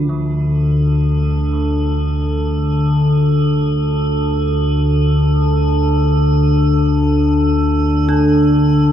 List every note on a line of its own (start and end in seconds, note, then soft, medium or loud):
0.00 0.12 D2 medium
0.00 0.12 D3 medium
0.00 4.38 E3 medium
0.00 0.12 F3 medium
0.09 8.92 D2 medium
0.09 5.79 A3 medium
0.09 8.92 A4 medium
0.14 8.92 D3 medium
8.09 8.92 D4 medium